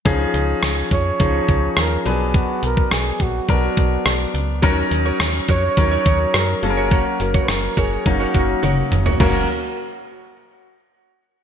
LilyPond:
<<
  \new Staff \with { instrumentName = "Clean electric guitar" } { \time 4/4 \key fis \major \tempo 4 = 105 r1 | r1 | <fis' ais' cis''>16 r8 <fis' ais' cis''>16 r8 <fis' ais' cis''>16 <fis' ais' cis''>16 r16 <fis' ais' cis''>16 <fis' ais' cis''>16 r16 <fis' ais' cis''>16 r8 <fis' ais' cis''>16 | <fis' ais' cis''>16 r8 <fis' ais' cis''>16 r8 <fis' ais' cis''>16 <fis' ais' cis''>16 r16 <fis' ais' cis''>16 <fis' ais' cis''>16 r16 <fis' ais' cis''>16 r8 <fis' ais' cis''>16 |
<fis' ais' cis''>16 r2. r8. | }
  \new Staff \with { instrumentName = "Flugelhorn" } { \time 4/4 \key fis \major r4. cis''4. ais'8 gis'8 | fis'8 ais'8 gis'8 fis'8 fis'4. r8 | r4. cis''4. ais'8 gis'8 | fis'8 ais'16. b'32 ais'8 gis'8 fis'4. r8 |
fis'8 r2. r8 | }
  \new Staff \with { instrumentName = "Grand piano" } { \time 4/4 \key fis \major <eis cis' dis' gis'>4. r8 <eis cis' dis' gis'>4. <fis b d' b'>8~ | <fis b d' b'>4 r4 <fis b d' ais'>4. r8 | <fis cis' dis' ais'>4. r8 <fis cis' dis' ais'>4. <fis ais cis' a' ais'>8~ | <fis ais cis' a' ais'>4 r4 <fis ais cis' dis'>4. r8 |
<fis ais cis' ais'>8 r2. r8 | }
  \new Staff \with { instrumentName = "FM bass" } { \clef bass \time 4/4 \key fis \major cis,8 cis,8 cis,8 eis,8 cis,8 cis,8 dis,8 b,,8~ | b,,8 b,,8 b,,8 ais,,8 b,,8 b,,8 b,,8 cis,8 | dis,8 dis,8 dis,8 eis,8 dis,8 dis,8 fis,8 fis,,8~ | fis,,8 fis,,8 fis,,8 fis,,8 fis,,8 fis,,8 fis,,8 eis,,8 |
fis,,8 r2. r8 | }
  \new DrumStaff \with { instrumentName = "Drums" } \drummode { \time 4/4 <hh bd>8 hh8 <hh ss>8 <hh bd>8 <hh bd>8 <hh bd>8 <hh ss>8 hh8 | <hh bd>8 hh16 bd16 <hh ss>8 <hh bd>8 <hh bd>8 <hh bd>8 <hh ss>8 hh8 | <hh bd>8 hh8 <hh ss>8 <hh bd>8 <hh bd>8 <hh bd>8 <hh ss>8 hh8 | <hh bd>8 hh16 bd16 <hh ss>8 <hh bd>8 <hh bd>8 <hh bd>8 <hh tommh>8 <hh toml>16 tomfh16 |
<cymc bd tomfh>4 r4 r4 r4 | }
>>